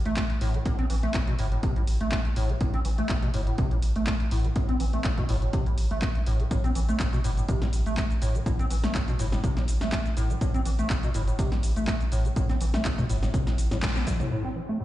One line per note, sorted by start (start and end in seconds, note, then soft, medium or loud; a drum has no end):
0.05 0.23 A1 medium
0.05 0.15 A3 loud
0.05 closed hi-hat soft
0.17 0.24 A3 loud
0.17 kick loud
0.17 clap loud
0.17 closed hi-hat medium
0.30 closed hi-hat soft
0.41 0.60 A1 loud
0.41 0.56 A2 loud
0.41 open hi-hat medium
0.54 0.58 G3 loud
0.54 closed hi-hat soft
0.65 0.77 A2 loud
0.65 kick loud
0.65 closed hi-hat medium
0.79 0.85 C4 loud
0.79 closed hi-hat soft
0.90 1.08 A1 loud
0.90 0.94 E3 medium
0.90 open hi-hat loud
1.03 1.13 A3 loud
1.03 closed hi-hat soft
1.14 1.22 A2 medium
1.14 kick loud
1.14 clap loud
1.14 closed hi-hat medium
1.27 1.34 B2 loud
1.27 closed hi-hat soft
1.39 1.57 G1 medium
1.39 1.46 A2 medium
1.39 open hi-hat medium
1.52 1.61 A2 medium
1.52 closed hi-hat soft
1.63 1.74 C3 medium
1.63 kick loud
1.63 closed hi-hat medium
1.76 1.83 A2 medium
1.76 closed hi-hat soft
1.87 1.97 A1 medium
1.87 open hi-hat loud
2.01 2.18 A1 medium
2.01 2.10 A3 loud
2.01 closed hi-hat soft
2.12 2.19 A3 loud
2.12 kick loud
2.12 clap loud
2.12 closed hi-hat medium
2.25 closed hi-hat soft
2.36 2.55 A1 loud
2.36 2.51 A2 loud
2.36 open hi-hat loud
2.49 2.53 G3 loud
2.49 closed hi-hat soft
2.61 2.72 A2 loud
2.61 kick loud
2.61 closed hi-hat medium
2.74 2.80 C4 loud
2.74 closed hi-hat soft
2.85 3.03 A1 loud
2.85 2.89 E3 medium
2.85 open hi-hat loud
2.98 3.08 A3 loud
2.98 closed hi-hat soft
3.09 3.17 A2 medium
3.09 kick loud
3.09 clap loud
3.09 closed hi-hat medium
3.22 3.29 B2 loud
3.22 closed hi-hat soft
3.34 3.52 G1 medium
3.34 3.41 A2 medium
3.34 open hi-hat medium
3.47 3.56 A2 medium
3.47 closed hi-hat soft
3.58 3.69 C3 loud
3.58 kick loud
3.58 closed hi-hat medium
3.71 3.78 A2 medium
3.71 closed hi-hat soft
3.82 3.92 A1 medium
3.82 open hi-hat loud
3.96 4.13 A1 medium
3.96 4.05 A3 loud
3.96 closed hi-hat soft
4.07 4.14 A3 loud
4.07 kick loud
4.07 clap loud
4.07 closed hi-hat medium
4.20 closed hi-hat soft
4.31 4.50 A1 loud
4.31 4.46 A2 loud
4.31 open hi-hat medium
4.45 4.48 G3 loud
4.45 closed hi-hat soft
4.56 4.67 A2 loud
4.56 kick loud
4.56 closed hi-hat medium
4.69 4.75 C4 loud
4.69 closed hi-hat soft
4.80 4.99 A1 loud
4.80 4.85 E3 medium
4.80 open hi-hat loud
4.93 5.03 A3 loud
4.93 closed hi-hat soft
5.04 5.12 A2 medium
5.04 kick loud
5.04 clap loud
5.04 closed hi-hat medium
5.18 5.24 B2 loud
5.18 kick medium
5.18 closed hi-hat soft
5.29 5.47 G1 medium
5.29 5.36 A2 loud
5.29 open hi-hat medium
5.42 5.51 A2 medium
5.42 closed hi-hat soft
5.53 5.64 C3 loud
5.53 kick loud
5.53 closed hi-hat medium
5.66 5.73 A2 medium
5.66 closed hi-hat soft
5.78 5.87 A1 medium
5.78 open hi-hat loud
5.91 6.08 A1 medium
5.91 6.00 A3 medium
5.91 closed hi-hat soft
6.02 6.10 A3 loud
6.02 kick loud
6.02 clap loud
6.02 closed hi-hat medium
6.15 closed hi-hat soft
6.26 6.45 A1 loud
6.26 6.42 A2 loud
6.26 open hi-hat medium
6.40 6.44 G3 loud
6.40 closed hi-hat soft
6.51 6.62 A2 loud
6.51 kick loud
6.51 closed hi-hat medium
6.51 shaker soft
6.64 6.70 C4 loud
6.64 closed hi-hat soft
6.64 shaker soft
6.75 6.94 A1 medium
6.75 6.80 E3 medium
6.75 open hi-hat loud
6.75 shaker medium
6.89 6.98 A3 loud
6.89 closed hi-hat soft
6.89 shaker soft
7.00 7.07 A2 medium
7.00 kick loud
7.00 clap loud
7.00 closed hi-hat medium
7.00 shaker soft
7.13 7.19 B2 loud
7.13 closed hi-hat soft
7.13 shaker soft
7.24 7.42 G1 medium
7.24 7.32 A2 loud
7.24 open hi-hat medium
7.24 shaker medium
7.37 7.47 A2 medium
7.37 closed hi-hat soft
7.37 shaker soft
7.49 7.60 C3 loud
7.49 kick loud
7.49 closed hi-hat medium
7.49 shaker soft
7.62 7.68 A2 medium
7.62 snare medium
7.62 closed hi-hat soft
7.62 shaker soft
7.73 7.82 A1 medium
7.73 open hi-hat loud
7.73 shaker medium
7.86 8.03 A1 medium
7.86 7.95 A3 loud
7.86 closed hi-hat soft
7.86 shaker soft
7.97 8.05 A3 loud
7.97 kick loud
7.97 snare medium
7.97 clap loud
7.97 closed hi-hat medium
7.97 shaker soft
8.10 closed hi-hat soft
8.10 shaker soft
8.22 8.40 A1 loud
8.22 8.37 A2 loud
8.22 open hi-hat medium
8.22 shaker medium
8.35 8.39 G3 loud
8.35 closed hi-hat soft
8.35 shaker soft
8.46 8.57 A2 loud
8.46 kick loud
8.46 closed hi-hat medium
8.46 shaker soft
8.59 8.66 C4 loud
8.59 closed hi-hat soft
8.59 shaker soft
8.70 8.89 A1 loud
8.70 8.75 E3 medium
8.70 open hi-hat loud
8.70 shaker medium
8.84 8.93 A3 loud
8.84 snare medium
8.84 shaker soft
8.95 9.02 A2 medium
8.95 kick loud
8.95 clap loud
8.95 closed hi-hat medium
8.95 shaker soft
9.08 9.14 B2 loud
9.08 closed hi-hat soft
9.08 shaker soft
9.19 9.38 G1 medium
9.19 9.27 A2 loud
9.19 open hi-hat medium
9.19 shaker medium
9.32 9.42 A2 medium
9.32 snare medium
9.32 closed hi-hat soft
9.32 shaker soft
9.44 9.55 C3 loud
9.44 kick loud
9.44 closed hi-hat medium
9.44 shaker soft
9.57 9.63 A2 medium
9.57 snare medium
9.57 closed hi-hat soft
9.57 shaker soft
9.68 9.78 A1 medium
9.68 open hi-hat loud
9.68 shaker medium
9.81 9.98 A1 medium
9.81 9.91 A3 loud
9.81 snare medium
9.81 closed hi-hat soft
9.81 shaker soft
9.92 10.00 A3 medium
9.92 kick loud
9.92 snare medium
9.92 clap loud
9.92 closed hi-hat medium
9.92 shaker soft
10.05 closed hi-hat soft
10.05 shaker soft
10.17 10.35 A1 loud
10.17 10.31 A2 loud
10.17 open hi-hat medium
10.17 shaker medium
10.30 10.34 G3 loud
10.30 closed hi-hat soft
10.30 shaker soft
10.41 10.52 A2 loud
10.41 kick loud
10.41 closed hi-hat medium
10.41 shaker soft
10.54 10.61 C4 loud
10.54 closed hi-hat soft
10.54 shaker soft
10.65 10.84 A1 loud
10.65 10.70 E3 medium
10.65 open hi-hat loud
10.65 shaker medium
10.79 10.88 A3 loud
10.79 closed hi-hat soft
10.79 shaker soft
10.90 10.97 A2 medium
10.90 kick loud
10.90 clap loud
10.90 closed hi-hat medium
10.90 shaker soft
11.03 11.09 B2 loud
11.03 closed hi-hat soft
11.03 shaker soft
11.14 11.33 G1 medium
11.14 11.22 A2 medium
11.14 open hi-hat medium
11.14 shaker medium
11.28 11.37 A2 medium
11.28 closed hi-hat soft
11.28 shaker soft
11.39 11.50 C3 loud
11.39 kick loud
11.39 closed hi-hat loud
11.39 shaker soft
11.52 11.58 A2 medium
11.52 snare medium
11.52 closed hi-hat soft
11.52 shaker soft
11.63 11.73 A1 medium
11.63 open hi-hat loud
11.63 shaker medium
11.76 11.94 A1 medium
11.76 11.86 A3 loud
11.76 closed hi-hat soft
11.76 shaker soft
11.87 11.95 A3 loud
11.87 kick loud
11.87 snare medium
11.87 clap loud
11.87 closed hi-hat medium
11.87 shaker soft
12.01 closed hi-hat soft
12.01 shaker soft
12.12 12.30 A1 loud
12.12 12.27 A2 loud
12.12 open hi-hat medium
12.12 shaker medium
12.25 12.29 G3 loud
12.25 closed hi-hat soft
12.25 shaker soft
12.36 12.47 A2 loud
12.36 kick loud
12.36 closed hi-hat loud
12.36 shaker soft
12.49 12.56 C4 loud
12.49 snare soft
12.49 closed hi-hat soft
12.49 shaker soft
12.61 12.79 A1 loud
12.61 12.65 E3 medium
12.61 open hi-hat loud
12.61 shaker medium
12.74 12.83 A3 loud
12.74 snare medium
12.74 closed hi-hat soft
12.74 shaker soft
12.85 12.92 A2 medium
12.85 kick loud
12.85 clap loud
12.85 closed hi-hat loud
12.85 shaker soft
12.98 13.05 B2 loud
12.98 kick medium
12.98 closed hi-hat soft
12.98 shaker soft
13.09 13.28 G1 medium
13.09 13.17 A2 loud
13.09 open hi-hat medium
13.09 shaker medium
13.23 13.32 A2 medium
13.23 snare medium
13.23 closed hi-hat soft
13.23 shaker soft
13.34 13.45 C3 loud
13.34 kick loud
13.34 closed hi-hat medium
13.34 shaker soft
13.47 13.53 A2 medium
13.47 snare medium
13.47 closed hi-hat soft
13.47 shaker soft
13.58 13.68 A1 medium
13.58 open hi-hat loud
13.58 shaker medium
13.71 13.89 A1 medium
13.71 13.78 A2 loud
13.71 snare medium
13.71 closed hi-hat soft
13.71 shaker soft
13.83 14.09 A3 medium
13.83 kick loud
13.83 snare medium
13.83 clap loud
13.83 closed hi-hat loud
13.83 shaker soft
13.96 closed hi-hat soft
13.96 high tom medium
13.96 shaker soft
14.07 14.25 A2 medium
14.07 14.11 B2 medium
14.07 kick medium
14.07 open hi-hat medium
14.07 mid tom medium
14.07 shaker medium
14.20 14.29 A2 loud
14.20 closed hi-hat soft
14.20 mid tom medium
14.20 shaker soft
14.31 14.42 A2 medium
14.31 shaker soft
14.44 14.51 C4 medium
14.44 shaker soft
14.56 14.60 E3 medium
14.56 shaker medium
14.69 14.78 A3 loud
14.80 14.85 A2 medium
14.80 shaker soft